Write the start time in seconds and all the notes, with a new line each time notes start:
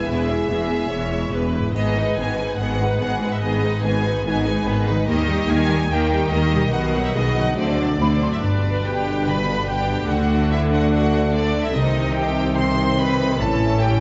Already playing: E2 G#3 G#4 B4
0.07 E1 E2 E3 B3 E4 G#4 B4 E5
0.28 G#3 E4 G#4 E5
0.49 E1 E2 E3 B3 G#4
0.70 G#3 E4
0.91 E1 E2 E3 B3 C#5
1.12 G#3 E4
1.32 E1 E2 E3 B3 B4
1.55 G#2 G#3 E4
1.62 G#3
1.67 D#4
1.71 G#1 B4 D#5
1.75 G#2 D#3 B3 G#4 B4, triangle
1.96 G#3 D#4 B4
2.16 G#1 G#2 D#3 B3 G#4 B4 G#5
2.20 B3
2.38 G#3 D#4 B4
2.56 G#1 G#2 D#3 B3 G#4 B4 F#5
2.61 B3
2.80 G#3 D#4 B4
2.99 G#1 G#2 D#3 B3 G#4 F#5
3.21 G#3 D#4 B4
3.32 E5
3.40 G#1 G#2 D#3 B3 G#4 D#5
3.64 G#3 D#4 B4
3.82 G#1 G#2 D#3 B3 G#4 B4 G#5
4.05 G#3 D#4 B4
4.24 G#1 G#2 D#3 B3 D#4 G#4 G#5
4.45 G#3 D#4 B4
4.66 G#1 G#2 D#3 B3 G#4 B4
4.87 D#3 G#3 D#4 B4
4.94 G3
4.98 D#4
5.03 G4 A#4
5.07 D#2 D#3 A#3 A#4 D#5
5.28 G3 D#4 G4
5.49 D#2 D#3 G3 A#3 G4 A#4 G#5
5.70 G3 D#4 G4
5.89 D#2 D#3 A#3 G4 A#4 G5
6.12 G3 D#4 G4
6.30 D#2 D#3 A#3 G4 A#4 D#5
6.53 B2 G3 D#4 G4
6.59 F#3
6.63 D#4
6.68 B4
6.72 B1 B2 D#3 B3 F#4 D#5 F#5
6.95 F#3 D#4 F#5
7.03 E5
7.14 B1 B2 D#3 B3 F#4 G#4 D#5
7.36 D3 F#3 D#4 F#5
7.44 F#3
7.49 D4
7.53 D2 F#4 C5
7.57 D3 A3 C4 C5 D5
7.79 F#3 C4 D4 D5
7.98 D2 D3 A3 C4 D4 C5 D5 B5
8.22 F#3 C4 D4 D5 C6
8.32 E4 E5
8.42 G1 G2 B2 D3 D4 B4 D5
8.63 B4
8.85 G4 G5
9.06 B4
9.26 D3 B4 B5
9.47 B4
9.68 G4 C5 G5
9.89 B4
10.09 D2 D3 A3 F#4 F#5
10.30 A4
10.51 E4 B4 E5
10.71 F#4 A4 F#5
10.92 A3 F#4 F#5
11.13 A4
11.34 D4 B4 D5
11.54 A4
11.65 E4 E5
11.75 C2 C3 D#3 C4 D#4 D#5
11.95 G4
12.16 G4 A4 G5
12.38 G4
12.58 G3 C5 C6
12.79 G4
12.99 A4 B4 B5
13.21 G4
13.39 A1 A2 E3 C#4 E4 A4 A5
13.62 A4
13.81 G4 B4 G5